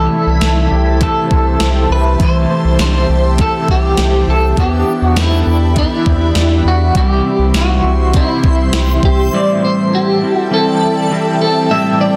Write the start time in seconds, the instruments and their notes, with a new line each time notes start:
Already playing: clean electric guitar C3 E3 A3 E4 G4 A4, ambient pad G4 C5 E5 A5
0.12 clean electric guitar A3
0.27 analog synth bass C2
0.41 analog synth bass C2, clean electric guitar E4, snare, closed hi-hat, tambourine
0.70 analog synth bass C2, clean electric guitar A3 E4 G4
1.00 clean electric guitar C3 E3 A3 E4 A4, kick, closed hi-hat
1.04 clean electric guitar G4
1.31 analog synth bass C2, clean electric guitar E4, kick
1.60 analog synth bass C2, clean electric guitar G4, snare, closed hi-hat, tambourine
1.90 analog synth bass C2, clean electric guitar E4 B4
2.18 analog synth bass C2, clean electric guitar C3 E3 A3 E4 C5, kick, closed hi-hat
2.23 clean electric guitar G4
2.49 clean electric guitar A3
2.65 analog synth bass C2
2.79 analog synth bass C2, clean electric guitar D4 C5, snare, closed hi-hat, tambourine
2.94 clean electric guitar E4
3.09 analog synth bass C2, clean electric guitar G4
3.38 clean electric guitar C3 E3 A3 E4 A4, kick, closed hi-hat
3.42 clean electric guitar G4
3.68 analog synth bass C2, clean electric guitar E4 G4, kick
3.97 analog synth bass C2, clean electric guitar G4, snare, closed hi-hat, tambourine
4.28 analog synth bass C2, clean electric guitar E4 A4
4.56 analog synth bass E2, clean electric guitar E3 B3 D4 G4, ambient pad D5 E5 B5, kick, closed hi-hat
4.61 clean electric guitar G4
4.87 clean electric guitar B3
5.02 analog synth bass E2, clean electric guitar F#4
5.16 analog synth bass E2, clean electric guitar C4 E4, snare, closed hi-hat, tambourine
5.32 clean electric guitar D4
5.46 analog synth bass E2, clean electric guitar G4
5.74 clean electric guitar E3 B3 D4, kick, closed hi-hat
5.79 clean electric guitar E4 G4
6.06 analog synth bass E2, clean electric guitar C4, kick
6.21 clean electric guitar D4
6.35 analog synth bass E2, clean electric guitar G4, snare, closed hi-hat, tambourine
6.65 analog synth bass E2, clean electric guitar D4 F#4
6.94 analog synth bass C2, clean electric guitar C3 E3 G3 C4 E4 G4, ambient pad G3 C5 E5 C6, kick, closed hi-hat
7.25 clean electric guitar C4
7.39 analog synth bass C2
7.54 analog synth bass C2, clean electric guitar E4 F#4, snare, closed hi-hat, tambourine
7.83 analog synth bass C2, clean electric guitar G3 C4 E4 G4
8.13 clean electric guitar C3 E3 G3 C4 E4, kick, closed hi-hat
8.17 clean electric guitar E4
8.44 analog synth bass C2, clean electric guitar E4, kick
8.73 analog synth bass C2, clean electric guitar G4, snare, closed hi-hat, tambourine
9.03 analog synth bass C2, clean electric guitar E4 G4, kick
9.33 clean electric guitar A2 E3 G3 C4 E4 D5, ambient pad A4 E5 G5 A5
9.63 clean electric guitar C4 C5
9.92 clean electric guitar E4 G4
10.21 clean electric guitar G3 C4 E4 G4
10.34 clean electric guitar F#4
10.50 clean electric guitar E3 G3 C4 E4 A4
10.81 clean electric guitar E4
11.10 clean electric guitar E3 G3 C4 E4 G4
11.41 clean electric guitar C4 A4
11.70 clean electric guitar A2 E3 G3 C4 E4 E5
12.00 clean electric guitar C4 D5